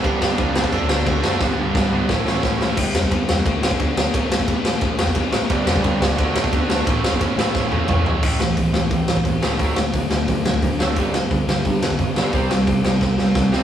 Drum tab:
CC |x---x---x---x---|----------------|x---------------|----------------|
RD |----------------|----------------|----x---x---x---|x---x---x---x---|
HH |----------------|----------------|----------------|----------------|
SD |--o---o---o---o-|o---o---o-o-o-o-|--o---o---o---o-|--o---o---o---o-|
T1 |----------------|----------------|----------------|----------------|
T2 |----------------|----------------|----------------|----------------|
FT |----------------|----------------|----------------|----------------|
BD |o---o--oo---o---|o---o---o---o---|o--oo---o--oo---|o--oo---o--oo---|

CC |----------------|----------------|x---------------|----------------|
RD |x---x---x---x---|x---x-----------|----------------|----------------|
HH |----------------|----------------|----o---o---o---|o---o---o---o---|
SD |--o---o---o---o-|--o---o-o-------|--o---o---o---o-|--o---o---o---o-|
T1 |----------------|----------o-----|----------------|----------------|
T2 |----------------|------------o---|----------------|----------------|
FT |----------------|--------------o-|----------------|----------------|
BD |o--oo---o--oo---|o--oo---o---o---|o---o---o--oo---|o---o---o--oo---|

CC |----------------|----------------|
RD |----------------|----------------|
HH |o---o---o---o---|o---o-----------|
SD |--o---o---o---o-|--o---o-o-o-o-o-|
T1 |----------------|----------------|
T2 |----------------|----------------|
FT |----------------|----------------|
BD |o---o---o--oo---|o---o---o---o---|